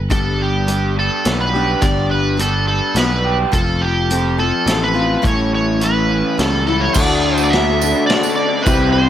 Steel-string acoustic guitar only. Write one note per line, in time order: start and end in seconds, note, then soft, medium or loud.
0.10 0.68 G2 medium
0.10 0.68 D3 medium
0.10 0.66 G3 medium
0.10 0.66 B3 medium
0.10 0.67 D4 medium
0.10 0.67 G4 medium
0.67 1.24 G3 soft
0.67 1.24 B3 soft
0.67 1.26 D4 medium
0.67 1.26 G4 medium
1.25 1.54 G3 medium
1.25 1.54 B3 medium
1.25 1.55 D4 medium
1.25 1.53 G4 medium
1.54 1.81 G3 soft
1.54 1.82 B3 soft
1.54 1.81 D4 soft
1.54 1.82 G4 soft
1.81 2.39 G2 medium
1.81 2.39 D3 medium
1.81 2.36 G3 medium
1.81 2.37 B3 medium
1.81 2.38 D4 medium
1.81 2.38 G4 medium
2.37 2.93 G3 medium
2.37 2.94 B3 medium
2.37 2.94 D4 medium
2.37 2.95 G4 medium
2.94 3.51 G3 soft
2.94 3.52 B3 medium
2.94 3.53 D4 medium
2.94 3.53 G4 medium
3.52 4.09 F3 medium
3.52 4.09 C4 medium
3.52 4.10 F4 medium
3.52 4.11 A4 medium
4.10 4.39 F3 medium
4.10 4.39 C4 medium
4.10 4.38 F4 medium
4.10 4.37 A4 medium
4.38 4.66 C4 soft
4.38 4.67 F4 soft
4.38 4.67 A4 soft
4.67 4.96 F3 medium
4.67 4.94 C4 medium
4.67 4.93 F4 medium
4.67 4.93 A4 medium
4.94 5.22 C4 soft
4.94 5.22 F4 soft
4.94 5.22 A4 soft
5.22 5.81 A2 medium
5.22 5.81 E3 medium
5.22 5.79 G3 medium
5.22 5.80 C#4 medium
5.22 5.81 E4 medium
5.22 5.81 A4 medium
5.80 6.37 G3 medium
5.80 6.38 C#4 medium
5.80 6.38 E4 medium
5.80 6.39 A4 medium
6.38 6.67 G3 medium
6.38 6.67 C#4 medium
6.38 6.66 E4 medium
6.38 6.65 A4 medium
6.67 6.95 G3 soft
6.67 6.96 C#4 soft
6.67 6.96 E4 soft
6.67 6.96 A4 soft
6.96 7.53 D3 medium
6.96 7.51 A3 medium
6.96 7.52 D4 medium
6.96 7.53 F#4 medium
6.96 7.53 A4 medium
7.52 7.81 A3 medium
7.52 7.82 D4 medium
7.52 7.81 F#4 medium
7.52 7.81 A4 medium
7.82 8.09 D4 soft
7.82 8.09 F#4 medium
7.82 8.10 A4 medium
8.09 8.65 A3 medium
8.09 8.66 D4 medium
8.09 8.66 F#4 medium
8.09 8.67 A4 medium
8.66 9.09 C3 medium
8.66 9.09 G3 medium
8.66 9.09 C4 medium
8.66 9.09 E4 medium
8.66 9.09 G4 medium